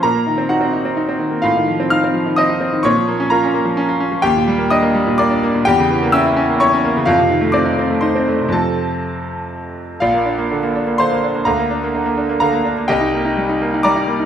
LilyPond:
<<
  \new Staff \with { instrumentName = "Grand piano" } { \time 3/4 \key bes \minor \tempo 4 = 127 <bes' bes''>4 <ges' ges''>4. r8 | <f' f''>4 <f'' f'''>4 <ees'' ees'''>4 | <des'' des'''>4 <bes' bes''>4. r8 | \key bes \major <g' g''>4 <ees'' ees'''>4 <d'' d'''>4 |
<g' g''>4 <e'' e'''>4 <cis'' cis'''>4 | <f' f''>4 <d'' d'''>4 <c'' c'''>4 | <a' a''>2~ <a' a''>8 r8 | <f' d'' f''>2 <c'' f'' c'''>4 |
<bes' f'' bes''>2 <bes' f'' bes''>4 | <g' ees'' g''>2 <d'' bes'' d'''>4 | }
  \new Staff \with { instrumentName = "Grand piano" } { \time 3/4 \key bes \minor bes,16 bes16 ees16 c'16 ees'16 c'16 ees'16 c'16 ees'16 c'16 ees16 bes16 | a,16 ees16 f16 c'16 ees'16 c'16 f16 ees16 c'16 ees'16 c'16 ees16 | bes,16 f16 bes16 des'16 f'16 des'16 bes16 f16 des'16 f'16 des'16 f16 | \key bes \major ees,16 bes,16 g16 bes16 d'16 bes16 g16 bes,16 bes16 d'16 bes16 bes,16 |
e,16 cis16 e16 bes16 cis'16 e'16 cis'16 bes16 e'16 cis'16 bes16 cis16 | f,16 c16 ees16 a16 c'16 ees'16 c'16 a16 ees'16 c'16 a16 c16 | <f, c f c'>2. | bes,,16 bes16 d'16 bes16 d16 bes16 d'16 bes16 d16 bes16 d'16 bes16 |
d,16 bes16 d'16 bes16 d16 bes16 d'16 bes16 d16 bes16 d'16 bes16 | c,16 ees'16 bes16 ees'16 g16 ees'16 bes16 ees'16 g16 ees'16 bes16 ees'16 | }
>>